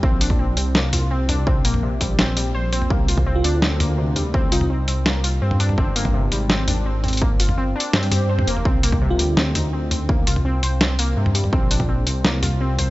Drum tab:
HH |----x-------x-------x-------x---|----x-------x-------x-------x---|----x-------x-------x-------x---|----x-------x-------x-------x---|
SD |----------------o---------------|----------------o---------------|----------------o---------------|----------------o---------------|
T2 |------o-------------o-------o---|------o-----------------------o-|------o-------------o-------o---|------o-------------------o---o-|
BD |o-----o-------------------------|o-----------o-------------------|o-----o-------------------------|o-------------------------------|

HH |----x-------x-------x-------xxxx|----x--------x----x-x-------x---|----x-------x-------x-------x---|----x-------x-------x-------x---|
SD |----------------o---------------|----------------o---------------|----------------o---------------|----------------o---------------|
T2 |------o-------------o-------o---|------o-------------o-----o---o-|------o-------------o-------o---|------o-------------------o---o-|
BD |o-----o-------------------------|o-------------------------------|o-----o-------------------------|o-------------------------------|

HH |----x-------x-------x-------x---|
SD |----------------o---------------|
T2 |------o-------------o-------o---|
BD |o-----o-------------------------|